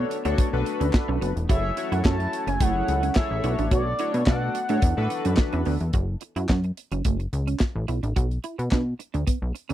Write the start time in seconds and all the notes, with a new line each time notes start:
Already playing: A3 B3 D4 F#4 A4 C#5
0.10 muted clean electric guitar stroke, closed hi-hat
0.25 D2 D4 F#4 A4 C#5, closed hi-hat
0.38 B3, kick, closed hi-hat
0.53 B1 D4 F#4 A4 B4
0.66 muted clean electric guitar stroke, closed hi-hat
0.80 D2 C#4, closed hi-hat
0.93 muted clean electric guitar stroke, kick, snare, clap
1.08 B1 C#4
1.21 F#1 B3, closed hi-hat
1.36 E1, closed hi-hat
1.49 F#1 F#3 A3 C#4 E4 F#4 G#4 A4 C#5 E5, kick, closed hi-hat
1.77 E4 F#4 A4 C#5, muted clean electric guitar stroke, closed hi-hat
1.92 F#2 E4 F#5, closed hi-hat
2.05 F#2 C#4 A5, kick, snare, clap
2.20 muted clean electric guitar stroke, closed hi-hat
2.33 closed hi-hat
2.47 F#1 C#4 G#5, closed hi-hat
2.60 F#1 A3 E4 G#4 A4 C#5 F#5, kick, closed hi-hat
2.75 muted clean electric guitar stroke
2.88 C#2, closed hi-hat
3.03 C#4, closed hi-hat
3.15 E4 G#4 A4 C#5 E5, muted clean electric guitar stroke, kick, snare, clap
3.31 A1
3.43 B1 A3 B3 D4 E4 F#4 A4 C#5, closed hi-hat
3.58 A1 D4, closed hi-hat
3.71 B1 F#4 D5, kick, closed hi-hat
3.99 D4 E4 F#4 A4 C#5, closed hi-hat
4.14 B2, muted clean electric guitar stroke, closed hi-hat
4.26 B2 D4 F#4 A4 D5 F#5, kick, snare, clap
4.55 muted clean electric guitar stroke, closed hi-hat
4.69 A2 D4 F#4 A4 C#5, closed hi-hat
4.82 E2 E3 B3 A4, kick, closed hi-hat
4.97 A2 D4 F#4 A4 B4
5.10 muted clean electric guitar stroke, closed hi-hat
5.25 F#2 C#4, closed hi-hat
5.37 muted clean electric guitar stroke, kick, snare, clap
5.53 E2 C#4, closed hi-hat
5.65 D2 B3, open hi-hat
5.80 E2, closed hi-hat
5.93 F#1 F#4, kick, closed hi-hat
6.21 muted clean electric guitar stroke, closed hi-hat
6.36 F#2 E4, closed hi-hat
6.49 F#2 C#4, kick, snare, clap
6.64 muted clean electric guitar stroke, closed hi-hat
6.77 closed hi-hat
6.92 F#1 C#4, closed hi-hat
7.05 F#1 A3, kick, closed hi-hat
7.20 muted clean electric guitar stroke, closed hi-hat
7.33 C#2, closed hi-hat
7.47 C#4, closed hi-hat
7.59 muted clean electric guitar stroke, kick, snare, clap
7.76 A1
7.88 B1 E4, closed hi-hat
8.03 A1 D4, closed hi-hat
8.16 B1 F#4, kick, closed hi-hat
8.31 closed hi-hat
8.44 E4, closed hi-hat
8.58 B2, muted clean electric guitar stroke, closed hi-hat
8.71 B2 D4, kick, snare, clap
8.99 muted clean electric guitar stroke, closed hi-hat
9.14 D2 D4, closed hi-hat
9.27 B3, kick, closed hi-hat
9.42 B1
9.55 muted clean electric guitar stroke, closed hi-hat
9.69 D2 C#4, closed hi-hat